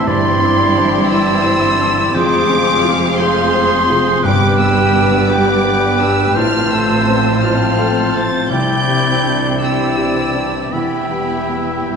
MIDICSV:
0, 0, Header, 1, 13, 480
1, 0, Start_track
1, 0, Key_signature, 0, "major"
1, 0, Tempo, 696056
1, 49, Time_signature, 6, 3, 24, 8
1, 3409, Tempo, 711744
1, 5809, Tempo, 732601
1, 6769, Tempo, 757576
1, 8033, End_track
2, 0, Start_track
2, 0, Title_t, "Violin section"
2, 0, Program_c, 0, 48
2, 60, Note_on_c, 0, 84, 106
2, 753, Note_off_c, 0, 84, 0
2, 765, Note_on_c, 0, 88, 114
2, 1482, Note_off_c, 0, 88, 0
2, 1483, Note_on_c, 0, 86, 127
2, 2196, Note_on_c, 0, 84, 112
2, 2203, Note_off_c, 0, 86, 0
2, 2925, Note_off_c, 0, 84, 0
2, 2931, Note_on_c, 0, 86, 115
2, 3166, Note_off_c, 0, 86, 0
2, 3167, Note_on_c, 0, 88, 106
2, 3635, Note_off_c, 0, 88, 0
2, 3644, Note_on_c, 0, 86, 105
2, 4122, Note_off_c, 0, 86, 0
2, 4128, Note_on_c, 0, 88, 103
2, 4367, Note_off_c, 0, 88, 0
2, 4374, Note_on_c, 0, 89, 119
2, 4608, Note_off_c, 0, 89, 0
2, 4613, Note_on_c, 0, 88, 104
2, 5093, Note_off_c, 0, 88, 0
2, 5095, Note_on_c, 0, 89, 92
2, 5571, Note_off_c, 0, 89, 0
2, 5579, Note_on_c, 0, 93, 99
2, 5813, Note_on_c, 0, 91, 120
2, 5814, Note_off_c, 0, 93, 0
2, 6514, Note_off_c, 0, 91, 0
2, 6531, Note_on_c, 0, 88, 93
2, 7249, Note_off_c, 0, 88, 0
2, 7250, Note_on_c, 0, 83, 77
2, 7955, Note_off_c, 0, 83, 0
2, 8033, End_track
3, 0, Start_track
3, 0, Title_t, "Flute"
3, 0, Program_c, 1, 73
3, 52, Note_on_c, 1, 84, 94
3, 763, Note_off_c, 1, 84, 0
3, 773, Note_on_c, 1, 84, 101
3, 1472, Note_off_c, 1, 84, 0
3, 1490, Note_on_c, 1, 84, 92
3, 2007, Note_off_c, 1, 84, 0
3, 2214, Note_on_c, 1, 84, 93
3, 2935, Note_on_c, 1, 79, 99
3, 2945, Note_off_c, 1, 84, 0
3, 3645, Note_off_c, 1, 79, 0
3, 3649, Note_on_c, 1, 79, 88
3, 4370, Note_on_c, 1, 81, 97
3, 4380, Note_off_c, 1, 79, 0
3, 5088, Note_off_c, 1, 81, 0
3, 5092, Note_on_c, 1, 81, 93
3, 5796, Note_off_c, 1, 81, 0
3, 5815, Note_on_c, 1, 79, 86
3, 6504, Note_off_c, 1, 79, 0
3, 6539, Note_on_c, 1, 79, 75
3, 7085, Note_off_c, 1, 79, 0
3, 7253, Note_on_c, 1, 79, 73
3, 8033, Note_off_c, 1, 79, 0
3, 8033, End_track
4, 0, Start_track
4, 0, Title_t, "Oboe"
4, 0, Program_c, 2, 68
4, 49, Note_on_c, 2, 74, 80
4, 753, Note_off_c, 2, 74, 0
4, 757, Note_on_c, 2, 74, 79
4, 1480, Note_on_c, 2, 72, 78
4, 1490, Note_off_c, 2, 74, 0
4, 2012, Note_off_c, 2, 72, 0
4, 2206, Note_on_c, 2, 72, 90
4, 2921, Note_on_c, 2, 71, 94
4, 2931, Note_off_c, 2, 72, 0
4, 3642, Note_off_c, 2, 71, 0
4, 3648, Note_on_c, 2, 71, 81
4, 4364, Note_on_c, 2, 72, 90
4, 4374, Note_off_c, 2, 71, 0
4, 5085, Note_off_c, 2, 72, 0
4, 5089, Note_on_c, 2, 72, 83
4, 5794, Note_off_c, 2, 72, 0
4, 5804, Note_on_c, 2, 74, 82
4, 6499, Note_off_c, 2, 74, 0
4, 6527, Note_on_c, 2, 74, 69
4, 7248, Note_on_c, 2, 76, 64
4, 7258, Note_off_c, 2, 74, 0
4, 8033, Note_off_c, 2, 76, 0
4, 8033, End_track
5, 0, Start_track
5, 0, Title_t, "Violin section"
5, 0, Program_c, 3, 48
5, 60, Note_on_c, 3, 67, 84
5, 60, Note_on_c, 3, 74, 81
5, 1486, Note_off_c, 3, 67, 0
5, 1486, Note_off_c, 3, 74, 0
5, 1497, Note_on_c, 3, 68, 87
5, 1499, Note_on_c, 3, 77, 92
5, 2909, Note_off_c, 3, 68, 0
5, 2935, Note_on_c, 3, 71, 82
5, 2937, Note_off_c, 3, 77, 0
5, 2941, Note_on_c, 3, 74, 80
5, 4344, Note_off_c, 3, 74, 0
5, 4376, Note_on_c, 3, 72, 88
5, 5067, Note_off_c, 3, 71, 0
5, 5103, Note_on_c, 3, 69, 69
5, 5815, Note_off_c, 3, 69, 0
5, 5815, Note_off_c, 3, 72, 0
5, 5816, Note_on_c, 3, 67, 67
5, 5816, Note_on_c, 3, 74, 76
5, 6504, Note_off_c, 3, 67, 0
5, 6504, Note_off_c, 3, 74, 0
5, 6538, Note_on_c, 3, 67, 66
5, 6538, Note_on_c, 3, 74, 70
5, 7238, Note_off_c, 3, 67, 0
5, 7238, Note_off_c, 3, 74, 0
5, 7249, Note_on_c, 3, 76, 60
5, 7251, Note_on_c, 3, 67, 66
5, 8033, Note_off_c, 3, 67, 0
5, 8033, Note_off_c, 3, 76, 0
5, 8033, End_track
6, 0, Start_track
6, 0, Title_t, "Clarinet"
6, 0, Program_c, 4, 71
6, 47, Note_on_c, 4, 64, 91
6, 746, Note_off_c, 4, 64, 0
6, 767, Note_on_c, 4, 64, 88
6, 1469, Note_off_c, 4, 64, 0
6, 1492, Note_on_c, 4, 68, 96
6, 2008, Note_off_c, 4, 68, 0
6, 2209, Note_on_c, 4, 68, 95
6, 2935, Note_on_c, 4, 67, 102
6, 2945, Note_off_c, 4, 68, 0
6, 3649, Note_off_c, 4, 67, 0
6, 3654, Note_on_c, 4, 67, 88
6, 4371, Note_on_c, 4, 65, 97
6, 4381, Note_off_c, 4, 67, 0
6, 5087, Note_off_c, 4, 65, 0
6, 5091, Note_on_c, 4, 65, 79
6, 5795, Note_off_c, 4, 65, 0
6, 5813, Note_on_c, 4, 64, 94
6, 6503, Note_off_c, 4, 64, 0
6, 6530, Note_on_c, 4, 64, 67
6, 7141, Note_off_c, 4, 64, 0
6, 7248, Note_on_c, 4, 64, 76
6, 8033, Note_off_c, 4, 64, 0
6, 8033, End_track
7, 0, Start_track
7, 0, Title_t, "Harp"
7, 0, Program_c, 5, 46
7, 0, Note_on_c, 5, 45, 78
7, 0, Note_on_c, 5, 52, 61
7, 0, Note_on_c, 5, 57, 67
7, 0, Note_on_c, 5, 60, 60
7, 0, Note_on_c, 5, 64, 65
7, 0, Note_on_c, 5, 72, 72
7, 0, Note_on_c, 5, 76, 69
7, 59, Note_on_c, 5, 43, 82
7, 71, Note_off_c, 5, 45, 0
7, 71, Note_off_c, 5, 52, 0
7, 73, Note_off_c, 5, 57, 0
7, 167, Note_off_c, 5, 60, 0
7, 176, Note_on_c, 5, 60, 67
7, 291, Note_on_c, 5, 62, 68
7, 400, Note_off_c, 5, 64, 0
7, 408, Note_on_c, 5, 64, 63
7, 521, Note_off_c, 5, 72, 0
7, 529, Note_on_c, 5, 72, 67
7, 645, Note_on_c, 5, 74, 67
7, 753, Note_off_c, 5, 76, 0
7, 761, Note_on_c, 5, 76, 86
7, 874, Note_off_c, 5, 72, 0
7, 882, Note_on_c, 5, 72, 77
7, 992, Note_off_c, 5, 64, 0
7, 1000, Note_on_c, 5, 64, 68
7, 1113, Note_off_c, 5, 60, 0
7, 1122, Note_on_c, 5, 60, 67
7, 1245, Note_on_c, 5, 50, 56
7, 1355, Note_off_c, 5, 60, 0
7, 1363, Note_on_c, 5, 60, 64
7, 1482, Note_on_c, 5, 41, 83
7, 1499, Note_off_c, 5, 64, 0
7, 1500, Note_off_c, 5, 76, 0
7, 1501, Note_off_c, 5, 74, 0
7, 1502, Note_off_c, 5, 50, 0
7, 1502, Note_off_c, 5, 62, 0
7, 1505, Note_off_c, 5, 43, 0
7, 1597, Note_off_c, 5, 60, 0
7, 1605, Note_on_c, 5, 60, 60
7, 1726, Note_on_c, 5, 65, 68
7, 1843, Note_on_c, 5, 68, 70
7, 1955, Note_off_c, 5, 72, 0
7, 1964, Note_on_c, 5, 72, 70
7, 2088, Note_on_c, 5, 77, 69
7, 2209, Note_on_c, 5, 80, 81
7, 2317, Note_off_c, 5, 72, 0
7, 2326, Note_on_c, 5, 72, 74
7, 2437, Note_off_c, 5, 68, 0
7, 2446, Note_on_c, 5, 68, 65
7, 2557, Note_off_c, 5, 60, 0
7, 2565, Note_on_c, 5, 60, 62
7, 2687, Note_on_c, 5, 48, 68
7, 2802, Note_off_c, 5, 60, 0
7, 2935, Note_on_c, 5, 43, 88
7, 2948, Note_off_c, 5, 41, 0
7, 2948, Note_off_c, 5, 48, 0
7, 2948, Note_off_c, 5, 68, 0
7, 2949, Note_off_c, 5, 72, 0
7, 2950, Note_off_c, 5, 65, 0
7, 2951, Note_off_c, 5, 77, 0
7, 2951, Note_off_c, 5, 80, 0
7, 3057, Note_on_c, 5, 59, 61
7, 3178, Note_on_c, 5, 62, 63
7, 3297, Note_on_c, 5, 67, 71
7, 3418, Note_on_c, 5, 71, 72
7, 3536, Note_on_c, 5, 74, 73
7, 3652, Note_on_c, 5, 79, 84
7, 3762, Note_off_c, 5, 71, 0
7, 3770, Note_on_c, 5, 71, 71
7, 3882, Note_off_c, 5, 67, 0
7, 3890, Note_on_c, 5, 67, 66
7, 4001, Note_off_c, 5, 59, 0
7, 4009, Note_on_c, 5, 59, 66
7, 4123, Note_on_c, 5, 50, 55
7, 4233, Note_off_c, 5, 59, 0
7, 4241, Note_on_c, 5, 59, 61
7, 4359, Note_on_c, 5, 45, 80
7, 4383, Note_off_c, 5, 59, 0
7, 4384, Note_off_c, 5, 50, 0
7, 4386, Note_off_c, 5, 71, 0
7, 4387, Note_off_c, 5, 43, 0
7, 4387, Note_off_c, 5, 67, 0
7, 4387, Note_off_c, 5, 79, 0
7, 4388, Note_off_c, 5, 62, 0
7, 4388, Note_off_c, 5, 74, 0
7, 4485, Note_on_c, 5, 57, 57
7, 4609, Note_on_c, 5, 60, 62
7, 4730, Note_on_c, 5, 65, 56
7, 4854, Note_on_c, 5, 69, 66
7, 4973, Note_on_c, 5, 72, 66
7, 5091, Note_on_c, 5, 77, 71
7, 5204, Note_off_c, 5, 69, 0
7, 5212, Note_on_c, 5, 69, 67
7, 5326, Note_off_c, 5, 65, 0
7, 5335, Note_on_c, 5, 65, 61
7, 5442, Note_off_c, 5, 57, 0
7, 5451, Note_on_c, 5, 57, 57
7, 5570, Note_on_c, 5, 53, 58
7, 5686, Note_off_c, 5, 57, 0
7, 5694, Note_on_c, 5, 57, 62
7, 5814, Note_on_c, 5, 48, 73
7, 5825, Note_off_c, 5, 45, 0
7, 5828, Note_off_c, 5, 77, 0
7, 5829, Note_off_c, 5, 53, 0
7, 5829, Note_off_c, 5, 69, 0
7, 5831, Note_off_c, 5, 57, 0
7, 5831, Note_off_c, 5, 65, 0
7, 5931, Note_on_c, 5, 55, 56
7, 6049, Note_on_c, 5, 62, 59
7, 6174, Note_on_c, 5, 64, 56
7, 6291, Note_on_c, 5, 67, 57
7, 6411, Note_on_c, 5, 74, 55
7, 6529, Note_on_c, 5, 76, 61
7, 6643, Note_off_c, 5, 67, 0
7, 6651, Note_on_c, 5, 67, 53
7, 6766, Note_off_c, 5, 64, 0
7, 6774, Note_on_c, 5, 64, 50
7, 6884, Note_off_c, 5, 55, 0
7, 6892, Note_on_c, 5, 55, 51
7, 7003, Note_off_c, 5, 60, 0
7, 7010, Note_on_c, 5, 60, 44
7, 7116, Note_off_c, 5, 55, 0
7, 7124, Note_on_c, 5, 55, 46
7, 7248, Note_on_c, 5, 52, 63
7, 7267, Note_off_c, 5, 62, 0
7, 7267, Note_off_c, 5, 72, 0
7, 7268, Note_off_c, 5, 48, 0
7, 7268, Note_off_c, 5, 60, 0
7, 7268, Note_off_c, 5, 74, 0
7, 7369, Note_on_c, 5, 59, 43
7, 7476, Note_off_c, 5, 64, 0
7, 7484, Note_on_c, 5, 64, 47
7, 7600, Note_off_c, 5, 67, 0
7, 7607, Note_on_c, 5, 67, 42
7, 7728, Note_on_c, 5, 71, 46
7, 7839, Note_off_c, 5, 76, 0
7, 7847, Note_on_c, 5, 76, 48
7, 7968, Note_on_c, 5, 79, 56
7, 8033, Note_off_c, 5, 52, 0
7, 8033, Note_off_c, 5, 55, 0
7, 8033, Note_off_c, 5, 59, 0
7, 8033, Note_off_c, 5, 64, 0
7, 8033, Note_off_c, 5, 67, 0
7, 8033, Note_off_c, 5, 71, 0
7, 8033, Note_off_c, 5, 76, 0
7, 8033, Note_off_c, 5, 79, 0
7, 8033, End_track
8, 0, Start_track
8, 0, Title_t, "Felt piano"
8, 0, Program_c, 6, 0
8, 0, Control_c, 6, 64, 127
8, 42, Note_on_c, 6, 43, 72
8, 62, Control_c, 6, 64, 0
8, 162, Control_c, 6, 64, 127
8, 287, Note_on_c, 6, 60, 65
8, 528, Note_on_c, 6, 62, 70
8, 666, Note_off_c, 6, 60, 0
8, 763, Note_on_c, 6, 64, 71
8, 907, Note_off_c, 6, 62, 0
8, 1003, Note_on_c, 6, 72, 67
8, 1146, Note_off_c, 6, 64, 0
8, 1237, Note_on_c, 6, 62, 58
8, 1386, Note_off_c, 6, 72, 0
8, 1449, Note_off_c, 6, 43, 0
8, 1479, Note_off_c, 6, 62, 0
8, 1480, Note_on_c, 6, 41, 84
8, 1494, Control_c, 6, 64, 0
8, 1598, Control_c, 6, 64, 127
8, 1720, Note_on_c, 6, 60, 67
8, 1963, Note_on_c, 6, 65, 72
8, 2105, Note_off_c, 6, 60, 0
8, 2202, Note_on_c, 6, 68, 70
8, 2349, Note_off_c, 6, 65, 0
8, 2445, Note_on_c, 6, 72, 67
8, 2590, Note_off_c, 6, 68, 0
8, 2685, Note_on_c, 6, 65, 63
8, 2831, Note_off_c, 6, 72, 0
8, 2900, Note_off_c, 6, 41, 0
8, 2927, Note_off_c, 6, 65, 0
8, 2929, Note_on_c, 6, 43, 79
8, 2941, Control_c, 6, 64, 0
8, 3072, Control_c, 6, 64, 127
8, 3166, Note_on_c, 6, 59, 65
8, 3410, Note_on_c, 6, 62, 62
8, 3549, Note_off_c, 6, 59, 0
8, 3645, Note_on_c, 6, 67, 71
8, 3788, Note_off_c, 6, 62, 0
8, 3882, Note_on_c, 6, 71, 68
8, 4027, Note_off_c, 6, 67, 0
8, 4120, Note_on_c, 6, 62, 65
8, 4266, Note_off_c, 6, 71, 0
8, 4338, Note_off_c, 6, 43, 0
8, 4363, Note_off_c, 6, 62, 0
8, 4365, Note_on_c, 6, 45, 89
8, 4376, Control_c, 6, 64, 0
8, 4482, Control_c, 6, 64, 127
8, 4611, Note_on_c, 6, 57, 65
8, 4852, Note_on_c, 6, 60, 69
8, 4996, Note_off_c, 6, 57, 0
8, 5092, Note_on_c, 6, 65, 62
8, 5234, Note_off_c, 6, 60, 0
8, 5327, Note_on_c, 6, 69, 64
8, 5474, Note_off_c, 6, 65, 0
8, 5570, Note_on_c, 6, 60, 58
8, 5712, Note_off_c, 6, 69, 0
8, 5782, Note_off_c, 6, 45, 0
8, 5808, Note_on_c, 6, 36, 73
8, 5810, Note_off_c, 6, 60, 0
8, 5822, Control_c, 6, 64, 0
8, 5932, Control_c, 6, 64, 127
8, 6048, Note_on_c, 6, 55, 54
8, 6289, Note_on_c, 6, 62, 57
8, 6432, Note_off_c, 6, 55, 0
8, 6531, Note_on_c, 6, 64, 50
8, 6674, Note_off_c, 6, 62, 0
8, 6774, Note_on_c, 6, 67, 55
8, 6913, Note_off_c, 6, 64, 0
8, 7009, Note_on_c, 6, 62, 49
8, 7153, Note_off_c, 6, 67, 0
8, 7221, Note_off_c, 6, 36, 0
8, 7248, Note_off_c, 6, 62, 0
8, 7254, Note_on_c, 6, 40, 64
8, 7259, Control_c, 6, 64, 0
8, 7368, Control_c, 6, 64, 127
8, 7492, Note_on_c, 6, 55, 43
8, 7731, Note_on_c, 6, 59, 44
8, 7874, Note_off_c, 6, 55, 0
8, 7970, Note_on_c, 6, 64, 43
8, 8033, Note_off_c, 6, 40, 0
8, 8033, Note_off_c, 6, 59, 0
8, 8033, Note_off_c, 6, 64, 0
8, 8033, End_track
9, 0, Start_track
9, 0, Title_t, "Viola section"
9, 0, Program_c, 7, 48
9, 0, Note_on_c, 7, 60, 73
9, 51, Note_on_c, 7, 64, 84
9, 1454, Note_off_c, 7, 64, 0
9, 1468, Note_off_c, 7, 60, 0
9, 1473, Note_on_c, 7, 68, 85
9, 1476, Note_on_c, 7, 60, 78
9, 2897, Note_off_c, 7, 68, 0
9, 2898, Note_off_c, 7, 60, 0
9, 2933, Note_on_c, 7, 59, 76
9, 2934, Note_on_c, 7, 67, 80
9, 4340, Note_off_c, 7, 59, 0
9, 4340, Note_off_c, 7, 67, 0
9, 4366, Note_on_c, 7, 60, 83
9, 4369, Note_on_c, 7, 65, 77
9, 5783, Note_off_c, 7, 60, 0
9, 5808, Note_on_c, 7, 64, 71
9, 5809, Note_on_c, 7, 60, 67
9, 5811, Note_off_c, 7, 65, 0
9, 6500, Note_off_c, 7, 64, 0
9, 6501, Note_off_c, 7, 60, 0
9, 6531, Note_on_c, 7, 60, 63
9, 6534, Note_on_c, 7, 64, 57
9, 7234, Note_off_c, 7, 60, 0
9, 7236, Note_off_c, 7, 64, 0
9, 7243, Note_on_c, 7, 64, 67
9, 7245, Note_on_c, 7, 59, 54
9, 8033, Note_off_c, 7, 59, 0
9, 8033, Note_off_c, 7, 64, 0
9, 8033, End_track
10, 0, Start_track
10, 0, Title_t, "French horn section"
10, 0, Program_c, 8, 60
10, 0, Note_on_c, 8, 52, 85
10, 50, Note_on_c, 8, 62, 83
10, 1453, Note_off_c, 8, 62, 0
10, 1480, Note_on_c, 8, 60, 86
10, 1483, Note_on_c, 8, 56, 81
10, 1484, Note_off_c, 8, 52, 0
10, 2798, Note_off_c, 8, 56, 0
10, 2798, Note_off_c, 8, 60, 0
10, 2915, Note_on_c, 8, 55, 86
10, 2917, Note_on_c, 8, 59, 95
10, 4331, Note_off_c, 8, 55, 0
10, 4332, Note_off_c, 8, 59, 0
10, 4362, Note_on_c, 8, 60, 98
10, 4368, Note_on_c, 8, 53, 85
10, 5781, Note_off_c, 8, 60, 0
10, 5784, Note_off_c, 8, 53, 0
10, 5816, Note_on_c, 8, 52, 83
10, 5817, Note_on_c, 8, 62, 76
10, 7139, Note_off_c, 8, 62, 0
10, 7246, Note_on_c, 8, 67, 64
10, 8033, Note_off_c, 8, 52, 0
10, 8033, Note_off_c, 8, 67, 0
10, 8033, End_track
11, 0, Start_track
11, 0, Title_t, "Cello section"
11, 0, Program_c, 10, 48
11, 48, Note_on_c, 10, 43, 101
11, 1453, Note_off_c, 10, 43, 0
11, 1473, Note_on_c, 10, 41, 96
11, 2897, Note_off_c, 10, 41, 0
11, 2929, Note_on_c, 10, 43, 100
11, 4338, Note_off_c, 10, 43, 0
11, 4363, Note_on_c, 10, 45, 93
11, 5809, Note_off_c, 10, 45, 0
11, 5813, Note_on_c, 10, 48, 87
11, 7223, Note_off_c, 10, 48, 0
11, 7245, Note_on_c, 10, 40, 67
11, 7906, Note_off_c, 10, 40, 0
11, 7970, Note_on_c, 10, 43, 74
11, 8033, Note_off_c, 10, 43, 0
11, 8033, End_track
12, 0, Start_track
12, 0, Title_t, "Timpani"
12, 0, Program_c, 11, 47
12, 50, Note_on_c, 11, 43, 103
12, 734, Note_off_c, 11, 43, 0
12, 2928, Note_on_c, 11, 43, 108
12, 3619, Note_off_c, 11, 43, 0
12, 5812, Note_on_c, 11, 48, 98
12, 6502, Note_off_c, 11, 48, 0
12, 8033, End_track
13, 0, Start_track
13, 0, Title_t, "Double bass section"
13, 0, Program_c, 12, 48
13, 50, Note_on_c, 12, 31, 84
13, 1453, Note_off_c, 12, 31, 0
13, 1482, Note_on_c, 12, 29, 87
13, 2901, Note_off_c, 12, 29, 0
13, 2927, Note_on_c, 12, 31, 97
13, 4337, Note_off_c, 12, 31, 0
13, 4365, Note_on_c, 12, 33, 98
13, 5807, Note_on_c, 12, 36, 78
13, 5809, Note_off_c, 12, 33, 0
13, 7220, Note_off_c, 12, 36, 0
13, 7247, Note_on_c, 12, 28, 62
13, 8033, Note_off_c, 12, 28, 0
13, 8033, End_track
0, 0, End_of_file